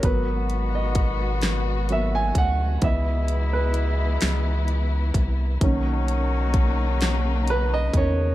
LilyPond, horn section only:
\new Staff \with { instrumentName = "Horn section" } { \time 6/8 \key cis \dorian \tempo 4. = 43 <dis b fis'>2~ <dis b fis'>8 r8 | <b, gis e'>2~ <b, gis e'>8 r8 | <dis cis' fis'>2~ <dis cis' fis'>8 r8 | }